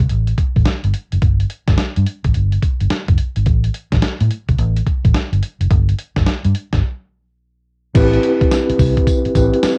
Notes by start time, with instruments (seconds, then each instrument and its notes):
0.10 fingered electric bass A1, closed hi-hat
0.27 closed hi-hat
0.38 kick, closed hi-hat
0.56 fingered electric bass A1, kick, closed hi-hat
0.66 muted fingered electric bass stroke, snare, closed hi-hat
0.84 fingered electric bass G1, closed hi-hat
0.94 closed hi-hat
1.12 fingered electric bass F#1, closed hi-hat
1.22 fingered electric bass G1, kick, closed hi-hat
1.40 closed hi-hat
1.50 closed hi-hat
1.68 fingered electric bass G1, kick, snare, closed hi-hat
1.78 muted fingered electric bass stroke, snare, closed hi-hat
1.96 fingered electric bass G2, closed hi-hat
2.06 closed hi-hat
2.24 fingered electric bass A1, kick, closed hi-hat
2.34 fingered electric bass G1, closed hi-hat
2.52 closed hi-hat
2.62 kick, closed hi-hat
2.80 fingered electric bass G1, closed hi-hat
2.90 snare, closed hi-hat
3.08 fingered electric bass F#1, kick, closed hi-hat
3.18 closed hi-hat
3.36 fingered electric bass G#1, closed hi-hat
3.46 fingered electric bass A1, kick, closed hi-hat
3.64 closed hi-hat
3.74 closed hi-hat
3.92 fingered electric bass A1, kick, snare, closed hi-hat
4.02 snare, closed hi-hat
4.20 fingered electric bass A2, closed hi-hat
4.31 closed hi-hat
4.49 fingered electric bass C2, kick, closed hi-hat
4.58 fingered electric bass A1, closed hi-hat
4.77 closed hi-hat
4.87 kick, closed hi-hat
5.05 fingered electric bass A1, kick, closed hi-hat
5.15 muted fingered electric bass stroke, snare, closed hi-hat
5.33 fingered electric bass G1, closed hi-hat
5.43 closed hi-hat
5.61 fingered electric bass F#1, closed hi-hat
5.71 fingered electric bass G1, kick, closed hi-hat
5.89 closed hi-hat
5.99 closed hi-hat
6.16 fingered electric bass G1, kick, snare, closed hi-hat
6.26 muted fingered electric bass stroke, snare, closed hi-hat
6.44 fingered electric bass G2, closed hi-hat
6.55 closed hi-hat
6.73 fingered electric bass G1, kick, snare, closed hi-hat
7.94 fingered electric bass A1, tine electric piano C4 E4 G4 B4, kick, closed hi-hat, crash, tambourine
8.13 closed hi-hat
8.23 closed hi-hat
8.41 muted fingered electric bass stroke, kick, closed hi-hat
8.51 snare, closed hi-hat, tambourine
8.69 muted fingered electric bass stroke, closed hi-hat
8.79 fingered electric bass C2, kick, open hi-hat, tambourine
8.97 kick, closed hi-hat
9.07 kick, closed hi-hat, tambourine
9.25 muted fingered electric bass stroke, closed hi-hat
9.35 fingered electric bass A1, tine electric piano C4 E4 G4 B4, kick, closed hi-hat, tambourine
9.54 closed hi-hat
9.63 muted fingered electric bass stroke, snare, closed hi-hat, tambourine